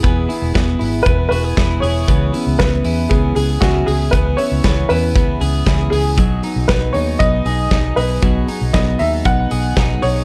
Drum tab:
HH |xoxoxo-o|xoxoxoxo|xoxoxoxo|xoxoxoxo|
SD |--o---o-|--o---o-|--o---o-|--o---o-|
BD |o-o-o-o-|o-o-o-o-|o-o-o-o-|o-o-o-o-|

HH |xoxoxoxo|
SD |--o---o-|
BD |o-o-o-o-|